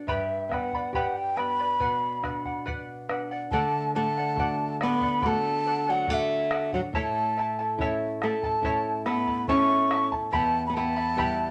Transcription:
0.07 G2 G4 B4 D5 E5 G5 B5, bombo low
0.49 B3 B4 D5 F#5 G5, bombo rim, bombo low
0.54 B5
0.72 B4 D5 B5, bombo low
0.93 G4 B4 D5 F#5 G5 B5, bombo low
1.17 G5
1.37 B3 B4 D5 G5 B5, bombo rim
1.59 B4 D5 B5
1.80 B2 B4 D5 F#5, bombo low
2.23 D4 B4 D5 F#5, bombo rim, bombo low
2.45 D5 F#5, bombo low
2.65 B4 D5 F#5, bombo low
3.09 D4 B4 D5 F#5, bombo rim
3.31 D5 F#5
3.51 D3 A3 A4 D5 F#5 A5, bombo low
3.95 A3 A4 D5 F#5 A5
4.18 D5 F#5
4.36 A3 D4 F#4 A4 D5 F#5, bombo low
4.81 B3 A4 D5 F#5 B5, bombo rim
5.01 D5 F#5, bombo low
5.22 A3 D4 F#4 A4 D5 F#5, bombo low
5.26 A3 A5
5.65 A4 D5 F#5
5.87 F#3 D5 F#5
6.06 A3 D4 F#4 A4 D5, bombo low
6.10 A3 E5 F#5
6.51 A4 D5 F#5, bombo rim
6.72 F#3 D5 F#5, bombo low
6.93 A2 A3 E4 A4 C#5 E5 A5, bombo low
7.37 E4 A4 E5 A5
7.59 E4 A4 A5
7.78 A3 C#4 E4 A4 C#5 E5, bombo low
7.82 A5
8.22 A3 E4 A4 E5 A5, bombo rim
8.43 E4 A4 A5, bombo low
8.62 A3 C#4 E4 A4 C#5 E5 A5, bombo low
9.05 B3 E4 A4 E5 A5 B5, bombo rim
9.27 E4 A4 A5, bombo low
9.48 A3 C#4 E4 A4 C#5 E5 A5 C#6, bombo low
9.91 E4 A4 E5 A5, bombo rim
10.12 E4 A4 A5, bombo low
10.31 E2 B3 E4 G4 E5 G5 A5 B5, bombo low
10.66 B3 B5
10.74 B3 E4 E5 G5 A5 B5
10.96 E4 E5 B5
11.16 G3 B3 E4 G4 E5 G5 B5, bombo low

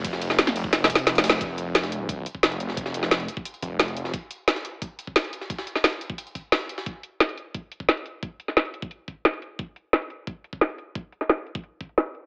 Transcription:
Already playing: F1
0.04 kick, closed hi-hat, ride
0.13 snare
0.22 closed hi-hat, ride
0.30 snare
0.39 snare, closed hi-hat, ride
0.47 snare, closed hi-hat
0.56 F1, closed hi-hat, open hi-hat, ride
0.64 kick
0.73 snare, closed hi-hat, ride
0.84 snare
0.90 kick, closed hi-hat, ride
0.95 snare, closed hi-hat
1.07 snare, closed hi-hat, ride
1.15 snare, closed hi-hat
1.24 snare, closed hi-hat, open hi-hat, ride
1.30 snare, closed hi-hat
1.41 F1, kick, closed hi-hat
1.58 closed hi-hat
1.75 snare, closed hi-hat
1.83 snare, closed hi-hat
1.92 closed hi-hat
2.09 kick, closed hi-hat
2.26 closed hi-hat
2.35 kick
2.43 F1, snare, closed hi-hat
2.52 closed hi-hat
2.60 closed hi-hat
2.69 snare
2.77 kick, closed hi-hat
2.86 snare
2.94 closed hi-hat
3.03 snare
3.11 snare, closed hi-hat
3.20 closed hi-hat
3.28 closed hi-hat
3.37 kick
3.45 closed hi-hat
3.54 closed hi-hat
3.62 F1, kick, closed hi-hat
3.79 snare, closed hi-hat
3.88 closed hi-hat
3.97 closed hi-hat
4.05 snare
4.14 kick, closed hi-hat
4.31 closed hi-hat
4.48 snare, closed hi-hat
4.56 snare, closed hi-hat
4.65 closed hi-hat
4.82 kick, closed hi-hat
4.99 closed hi-hat
5.07 kick
5.16 snare, closed hi-hat
5.24 closed hi-hat
5.33 closed hi-hat
5.41 snare
5.50 kick, closed hi-hat
5.58 snare
5.67 closed hi-hat
5.76 snare
5.84 snare, closed hi-hat
5.93 closed hi-hat
6.01 closed hi-hat
6.10 kick
6.18 closed hi-hat
6.27 closed hi-hat
6.35 kick, closed hi-hat
6.52 snare, closed hi-hat
6.61 closed hi-hat
6.69 closed hi-hat
6.78 snare
6.86 kick, closed hi-hat
7.03 closed hi-hat
7.20 snare, closed hi-hat
7.29 closed hi-hat
7.37 closed hi-hat
7.55 kick, closed hi-hat
7.72 closed hi-hat
7.80 kick
7.89 snare, closed hi-hat
7.97 closed hi-hat
8.06 closed hi-hat
8.23 kick, closed hi-hat
8.40 closed hi-hat
8.48 snare
8.57 snare, closed hi-hat
8.65 closed hi-hat
8.74 closed hi-hat
8.82 kick
8.91 closed hi-hat
9.08 kick, closed hi-hat
9.25 snare, closed hi-hat
9.34 closed hi-hat
9.42 closed hi-hat
9.59 kick, closed hi-hat
9.76 closed hi-hat
9.93 snare, closed hi-hat
10.02 closed hi-hat
10.10 closed hi-hat
10.27 kick, closed hi-hat
10.44 closed hi-hat
10.53 kick
10.61 snare, closed hi-hat
10.70 closed hi-hat
10.78 closed hi-hat
10.95 kick, closed hi-hat
11.12 closed hi-hat
11.21 snare
11.29 snare, closed hi-hat
11.38 closed hi-hat
11.47 closed hi-hat
11.55 kick
11.64 closed hi-hat
11.81 kick, closed hi-hat
11.89 closed hi-hat
11.98 snare, closed hi-hat
12.06 closed hi-hat
12.15 closed hi-hat

